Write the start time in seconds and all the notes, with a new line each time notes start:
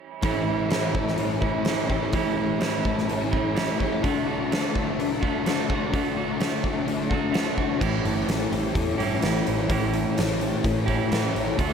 0.22 A2 E3 G3 A3 C#4 E4, kick, open hi-hat
0.45 E3 G3 A3 C#4 E4
0.69 A2 E3 G3 A3 C#4 E4, snare, open hi-hat
0.94 E3 A3, kick
1.08 snare
1.17 A2 E3 A3 C#4, open hi-hat
1.41 E3 G3 C#4 E4, kick
1.65 A2 E3 G3 A3 C#4 E4, snare, open hi-hat
1.89 E3 G3 A3 C#4 E4 G4, kick
2.12 A2 E3 G3 A3 C#4, kick, open hi-hat
2.16 E4
2.37 E3 G3 A3 C#4 E4
2.60 A2 E3 G3 A3 C#4 E4, snare, open hi-hat
2.85 E3 A3, kick
2.98 snare
3.08 A2 E3 A3 C#4, open hi-hat
3.31 E3 C#4 E4, kick
3.36 G3
3.55 A2 E3 G3 A3 C#4 E4, snare, open hi-hat
3.79 E3 G3 A3 C#4 E4 G4, kick
4.02 D3 A3 D4 F#4, kick, open hi-hat
4.26 A3 D4 F#4
4.31 A3
4.50 D3 A3 D4, snare, open hi-hat
4.54 F#4
4.74 A3 D4, kick
4.98 D3 A3 D4, open hi-hat
5.21 A3 D4 F#4, kick
5.45 D3 A3 D4, snare, open hi-hat
5.49 F#4
5.68 A3 D4 F#4, kick
5.93 D3 A3 D4 F#4, kick, open hi-hat
6.16 A3 D4 F#4
6.39 D3 A3 D4, snare, open hi-hat
6.43 F#4
6.63 A3 D4, kick
6.86 D3 A3 D4, open hi-hat
7.09 A3 D4 F#4, kick
7.31 D3 A3 D4 F#4, open hi-hat
7.35 A3 D4, snare
7.55 A3 D4 F#4, kick
7.79 A1 A2 E3 G3 A3 C#4 G4, kick, crash
8.05 G1 A3, open hi-hat
8.27 A1 A2 E3 A3 C#4, snare, open hi-hat
8.52 A1 E3 A3 G4, open hi-hat
8.73 E2 A2 E3 A3 C#4, kick, open hi-hat
8.98 G2 A2 E3 G3 A3 C#4 G4, open hi-hat
9.21 A1 A2 E3 G3 A3 C#4 G4, snare, open hi-hat
9.47 A1 C#4, open hi-hat
9.67 A1 A2 E3 G3 A3 C#4, kick, open hi-hat
9.72 G4
9.92 A3, open hi-hat
10.16 A1 A2 E3 A3 C#4, snare, open hi-hat
10.40 E3 A3 G4, open hi-hat
10.63 A1 A2 E3 A3 C#4, kick, open hi-hat
10.86 A2 E3 G3 A3 C#4 G4, kick, open hi-hat
11.10 A2 E3 G3 A3 C#4 G4, snare, open hi-hat
11.35 A1 C#4, open hi-hat
11.57 D2 D3 A3 D4, kick, open hi-hat
11.61 F#4